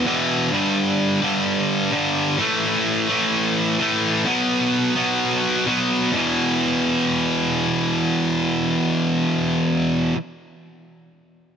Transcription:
0, 0, Header, 1, 2, 480
1, 0, Start_track
1, 0, Key_signature, 1, "minor"
1, 0, Tempo, 466926
1, 541, Time_signature, 4, 2, 24, 8
1, 11891, End_track
2, 0, Start_track
2, 0, Title_t, "Distorted electric guitar"
2, 0, Program_c, 0, 30
2, 58, Note_on_c, 0, 40, 80
2, 72, Note_on_c, 0, 47, 74
2, 85, Note_on_c, 0, 52, 82
2, 524, Note_off_c, 0, 40, 0
2, 531, Note_off_c, 0, 47, 0
2, 535, Note_on_c, 0, 43, 83
2, 538, Note_off_c, 0, 52, 0
2, 548, Note_on_c, 0, 50, 87
2, 560, Note_on_c, 0, 55, 85
2, 1237, Note_off_c, 0, 55, 0
2, 1242, Note_off_c, 0, 43, 0
2, 1249, Note_off_c, 0, 50, 0
2, 1250, Note_on_c, 0, 55, 80
2, 1269, Note_on_c, 0, 50, 69
2, 1277, Note_on_c, 0, 43, 69
2, 1954, Note_off_c, 0, 43, 0
2, 1959, Note_off_c, 0, 55, 0
2, 1967, Note_on_c, 0, 43, 74
2, 1969, Note_off_c, 0, 50, 0
2, 1985, Note_on_c, 0, 50, 84
2, 2001, Note_on_c, 0, 55, 78
2, 2438, Note_off_c, 0, 43, 0
2, 2443, Note_off_c, 0, 50, 0
2, 2447, Note_on_c, 0, 45, 86
2, 2455, Note_off_c, 0, 55, 0
2, 2464, Note_on_c, 0, 52, 80
2, 2477, Note_on_c, 0, 57, 100
2, 3157, Note_off_c, 0, 57, 0
2, 3158, Note_off_c, 0, 45, 0
2, 3166, Note_off_c, 0, 52, 0
2, 3169, Note_on_c, 0, 57, 73
2, 3187, Note_on_c, 0, 52, 70
2, 3202, Note_on_c, 0, 45, 61
2, 3879, Note_off_c, 0, 57, 0
2, 3883, Note_off_c, 0, 45, 0
2, 3888, Note_off_c, 0, 52, 0
2, 3895, Note_on_c, 0, 45, 77
2, 3911, Note_on_c, 0, 52, 79
2, 3927, Note_on_c, 0, 57, 81
2, 4362, Note_off_c, 0, 45, 0
2, 4370, Note_off_c, 0, 52, 0
2, 4378, Note_off_c, 0, 57, 0
2, 4378, Note_on_c, 0, 47, 82
2, 4401, Note_on_c, 0, 54, 78
2, 4407, Note_on_c, 0, 59, 91
2, 5083, Note_off_c, 0, 47, 0
2, 5085, Note_off_c, 0, 59, 0
2, 5094, Note_off_c, 0, 54, 0
2, 5097, Note_on_c, 0, 59, 69
2, 5114, Note_on_c, 0, 54, 63
2, 5129, Note_on_c, 0, 47, 55
2, 5803, Note_off_c, 0, 59, 0
2, 5809, Note_off_c, 0, 47, 0
2, 5811, Note_off_c, 0, 54, 0
2, 5821, Note_on_c, 0, 47, 66
2, 5839, Note_on_c, 0, 54, 67
2, 5854, Note_on_c, 0, 59, 82
2, 6285, Note_off_c, 0, 47, 0
2, 6290, Note_on_c, 0, 40, 80
2, 6294, Note_off_c, 0, 54, 0
2, 6301, Note_off_c, 0, 59, 0
2, 6311, Note_on_c, 0, 47, 80
2, 6336, Note_on_c, 0, 52, 87
2, 10415, Note_off_c, 0, 40, 0
2, 10436, Note_off_c, 0, 47, 0
2, 10462, Note_off_c, 0, 52, 0
2, 11891, End_track
0, 0, End_of_file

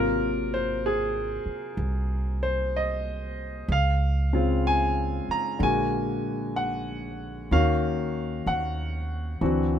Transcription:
0, 0, Header, 1, 4, 480
1, 0, Start_track
1, 0, Tempo, 955414
1, 1850, Time_signature, 4, 2, 24, 8
1, 4918, End_track
2, 0, Start_track
2, 0, Title_t, "Grand piano"
2, 0, Program_c, 0, 0
2, 0, Note_on_c, 0, 48, 44
2, 0, Note_on_c, 0, 54, 42
2, 0, Note_on_c, 0, 58, 43
2, 0, Note_on_c, 0, 65, 48
2, 0, Note_on_c, 0, 70, 79
2, 18, Control_c, 0, 64, 127
2, 265, Note_off_c, 0, 70, 0
2, 270, Note_on_c, 0, 72, 72
2, 425, Note_off_c, 0, 72, 0
2, 431, Note_on_c, 0, 68, 74
2, 1220, Note_on_c, 0, 72, 75
2, 1242, Note_off_c, 0, 68, 0
2, 1365, Note_off_c, 0, 72, 0
2, 1389, Note_on_c, 0, 75, 76
2, 1851, Note_off_c, 0, 48, 0
2, 1853, Note_off_c, 0, 54, 0
2, 1856, Control_c, 0, 64, 0
2, 1859, Note_off_c, 0, 58, 0
2, 1862, Note_off_c, 0, 65, 0
2, 1869, Note_on_c, 0, 77, 83
2, 1874, Note_off_c, 0, 75, 0
2, 1944, Control_c, 0, 64, 127
2, 2175, Note_on_c, 0, 49, 40
2, 2176, Note_on_c, 0, 56, 39
2, 2177, Note_on_c, 0, 60, 43
2, 2184, Note_on_c, 0, 65, 46
2, 2320, Note_off_c, 0, 77, 0
2, 2346, Note_on_c, 0, 80, 89
2, 2666, Note_off_c, 0, 80, 0
2, 2668, Note_on_c, 0, 82, 80
2, 2808, Note_off_c, 0, 56, 0
2, 2809, Note_on_c, 0, 50, 40
2, 2810, Note_off_c, 0, 82, 0
2, 2814, Note_off_c, 0, 49, 0
2, 2815, Note_off_c, 0, 60, 0
2, 2816, Note_on_c, 0, 56, 37
2, 2817, Control_c, 0, 64, 0
2, 2818, Note_off_c, 0, 65, 0
2, 2824, Note_on_c, 0, 58, 39
2, 2828, Note_on_c, 0, 80, 82
2, 2834, Note_on_c, 0, 66, 43
2, 2916, Control_c, 0, 64, 127
2, 3298, Note_on_c, 0, 78, 79
2, 3313, Note_off_c, 0, 80, 0
2, 3753, Note_off_c, 0, 78, 0
2, 3768, Note_off_c, 0, 50, 0
2, 3771, Note_off_c, 0, 58, 0
2, 3772, Note_off_c, 0, 56, 0
2, 3772, Note_off_c, 0, 66, 0
2, 3774, Note_on_c, 0, 51, 52
2, 3776, Control_c, 0, 64, 0
2, 3778, Note_on_c, 0, 58, 43
2, 3779, Note_on_c, 0, 66, 57
2, 3780, Note_on_c, 0, 61, 45
2, 3780, Note_on_c, 0, 77, 79
2, 3864, Control_c, 0, 64, 127
2, 4257, Note_on_c, 0, 78, 82
2, 4268, Note_off_c, 0, 77, 0
2, 4727, Note_off_c, 0, 66, 0
2, 4729, Note_off_c, 0, 51, 0
2, 4729, Note_on_c, 0, 52, 47
2, 4730, Note_on_c, 0, 60, 43
2, 4731, Note_off_c, 0, 58, 0
2, 4732, Note_off_c, 0, 61, 0
2, 4733, Control_c, 0, 64, 0
2, 4734, Note_on_c, 0, 62, 40
2, 4735, Note_on_c, 0, 66, 53
2, 4824, Control_c, 0, 64, 127
2, 4918, Note_off_c, 0, 52, 0
2, 4918, Note_off_c, 0, 60, 0
2, 4918, Note_off_c, 0, 62, 0
2, 4918, Note_off_c, 0, 66, 0
2, 4918, Note_off_c, 0, 78, 0
2, 4918, End_track
3, 0, Start_track
3, 0, Title_t, "Upright bass"
3, 0, Program_c, 1, 32
3, 0, Note_on_c, 1, 32, 70
3, 706, Note_off_c, 1, 32, 0
3, 891, Note_on_c, 1, 36, 72
3, 1831, Note_off_c, 1, 36, 0
3, 1851, Note_on_c, 1, 37, 77
3, 2629, Note_off_c, 1, 37, 0
3, 2813, Note_on_c, 1, 34, 76
3, 3751, Note_off_c, 1, 34, 0
3, 3775, Note_on_c, 1, 39, 69
3, 4231, Note_off_c, 1, 39, 0
3, 4253, Note_on_c, 1, 39, 67
3, 4708, Note_off_c, 1, 39, 0
3, 4729, Note_on_c, 1, 38, 73
3, 4918, Note_off_c, 1, 38, 0
3, 4918, End_track
4, 0, Start_track
4, 0, Title_t, "Muted upright bass strokes"
4, 732, Note_on_c, 9, 29, 33
4, 782, Note_off_c, 9, 29, 0
4, 2655, Note_on_c, 9, 29, 33
4, 2705, Note_off_c, 9, 29, 0
4, 4918, End_track
0, 0, End_of_file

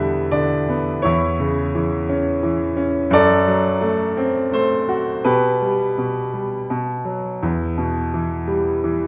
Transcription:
0, 0, Header, 1, 2, 480
1, 0, Start_track
1, 0, Key_signature, 1, "minor"
1, 0, Tempo, 703400
1, 700, Time_signature, 3, 2, 24, 8
1, 3092, Tempo, 718563
1, 6125, End_track
2, 0, Start_track
2, 0, Title_t, "Grand piano"
2, 0, Program_c, 0, 0
2, 0, Control_c, 0, 64, 127
2, 0, Note_on_c, 0, 40, 57
2, 0, Note_on_c, 0, 47, 39
2, 0, Note_on_c, 0, 50, 43
2, 0, Note_on_c, 0, 55, 46
2, 0, Note_on_c, 0, 74, 63
2, 0, Note_on_c, 0, 76, 75
2, 0, Note_on_c, 0, 78, 82
2, 210, Note_off_c, 0, 50, 0
2, 215, Note_off_c, 0, 74, 0
2, 215, Note_on_c, 0, 74, 63
2, 220, Note_on_c, 0, 50, 44
2, 224, Note_off_c, 0, 76, 0
2, 435, Note_off_c, 0, 47, 0
2, 470, Note_on_c, 0, 59, 49
2, 671, Note_off_c, 0, 40, 0
2, 673, Note_off_c, 0, 74, 0
2, 680, Note_off_c, 0, 55, 0
2, 688, Note_off_c, 0, 50, 0
2, 697, Note_on_c, 0, 73, 69
2, 699, Note_off_c, 0, 59, 0
2, 709, Note_on_c, 0, 64, 51
2, 710, Control_c, 0, 64, 0
2, 712, Note_off_c, 0, 78, 0
2, 716, Note_on_c, 0, 40, 59
2, 828, Control_c, 0, 64, 127
2, 953, Note_on_c, 0, 49, 46
2, 1193, Note_on_c, 0, 52, 45
2, 1428, Note_on_c, 0, 61, 50
2, 1625, Note_off_c, 0, 73, 0
2, 1631, Note_off_c, 0, 64, 0
2, 1648, Note_off_c, 0, 52, 0
2, 1658, Note_on_c, 0, 52, 45
2, 1870, Note_off_c, 0, 49, 0
2, 1878, Note_off_c, 0, 61, 0
2, 1888, Note_on_c, 0, 61, 56
2, 2113, Note_off_c, 0, 40, 0
2, 2120, Note_off_c, 0, 52, 0
2, 2120, Note_on_c, 0, 42, 66
2, 2123, Note_off_c, 0, 61, 0
2, 2138, Note_on_c, 0, 69, 65
2, 2138, Note_on_c, 0, 74, 95
2, 2140, Control_c, 0, 64, 0
2, 2278, Control_c, 0, 64, 127
2, 2371, Note_on_c, 0, 54, 52
2, 2601, Note_on_c, 0, 57, 55
2, 2845, Note_on_c, 0, 60, 59
2, 3068, Note_off_c, 0, 69, 0
2, 3073, Note_off_c, 0, 57, 0
2, 3083, Note_on_c, 0, 57, 45
2, 3094, Note_on_c, 0, 72, 72
2, 3123, Note_off_c, 0, 74, 0
2, 3301, Note_off_c, 0, 54, 0
2, 3328, Note_on_c, 0, 66, 49
2, 3536, Note_off_c, 0, 42, 0
2, 3544, Note_off_c, 0, 60, 0
2, 3550, Note_off_c, 0, 57, 0
2, 3561, Note_off_c, 0, 66, 0
2, 3569, Note_on_c, 0, 47, 62
2, 3569, Note_on_c, 0, 71, 69
2, 3577, Control_c, 0, 64, 0
2, 3580, Note_on_c, 0, 67, 49
2, 3584, Note_off_c, 0, 72, 0
2, 3680, Control_c, 0, 64, 127
2, 3819, Note_on_c, 0, 55, 46
2, 4048, Note_off_c, 0, 47, 0
2, 4058, Note_on_c, 0, 47, 44
2, 4262, Note_off_c, 0, 71, 0
2, 4268, Note_off_c, 0, 67, 0
2, 4287, Note_off_c, 0, 55, 0
2, 4297, Note_on_c, 0, 55, 42
2, 4522, Note_off_c, 0, 47, 0
2, 4528, Note_off_c, 0, 55, 0
2, 4540, Control_c, 0, 64, 0
2, 4541, Note_on_c, 0, 47, 52
2, 4657, Control_c, 0, 64, 127
2, 4772, Note_on_c, 0, 54, 39
2, 5011, Note_off_c, 0, 47, 0
2, 5011, Note_off_c, 0, 54, 0
2, 5026, Note_on_c, 0, 40, 57
2, 5028, Control_c, 0, 64, 0
2, 5150, Control_c, 0, 64, 127
2, 5260, Note_on_c, 0, 47, 43
2, 5502, Note_on_c, 0, 52, 42
2, 5725, Note_on_c, 0, 55, 49
2, 5959, Note_off_c, 0, 52, 0
2, 5969, Note_on_c, 0, 52, 44
2, 6125, Note_off_c, 0, 40, 0
2, 6125, Note_off_c, 0, 47, 0
2, 6125, Note_off_c, 0, 52, 0
2, 6125, Note_off_c, 0, 55, 0
2, 6125, End_track
0, 0, End_of_file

